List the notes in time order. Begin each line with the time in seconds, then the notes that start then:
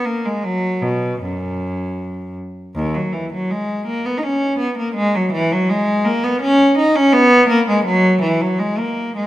0.05 A#3
0.25 G#3
0.43 F#3
0.82 B2
1.22 F#2
2.75 D#2
2.94 F#3
3.13 E3
3.33 F#3
3.51 G#3
3.86 A#3
4.06 B3
4.18 D#4
4.23 C#4
4.59 B3
4.78 A#3
4.95 G#3
5.15 F#3
5.32 E3
5.52 F#3
5.69 G#3
6.05 A#3
6.24 B3
6.41 C#4
6.78 D#4
6.96 C#4
7.13 B3
7.49 A#3
7.68 G#3
7.85 F#3
8.21 E3
8.41 F#3
8.59 G#3
8.78 A#3
9.16 G#3